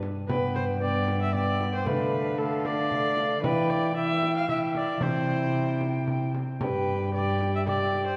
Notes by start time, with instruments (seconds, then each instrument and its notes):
0.03 frame drum
0.28 cello G2, trombone B3, viola B4, recorder G5, frame drum
0.55 viola C5
0.81 trombone B3, viola D5, recorder G5
1.08 frame drum
1.22 viola E5
1.34 trombone B3, viola D5, recorder G5, frame drum
1.61 frame drum
1.75 viola C5
1.86 cello D3, trombone A3, viola B4, recorder F5, frame drum
2.38 trombone A3, viola A4, recorder F5
2.65 viola D5, frame drum
2.91 frame drum
3.17 frame drum
3.43 cello E3, trombone E4, viola B4, recorder G5, frame drum
3.70 viola D5
3.96 trombone E4, viola E5, recorder G5
4.22 frame drum
4.37 viola F5
4.49 trombone E4, viola E5, recorder G5, frame drum
4.75 viola D5, frame drum
5.01 cello C3, trombone E4, viola C5, recorder G5, frame drum
5.81 frame drum
6.07 frame drum
6.35 frame drum
6.60 cello G2, trombone G4, viola B4, recorder G5, frame drum
7.14 trombone G4, viola D5, recorder G5
7.40 frame drum
7.55 viola E5
7.66 trombone G4, viola D5, recorder G5, frame drum
7.93 frame drum
8.07 viola C5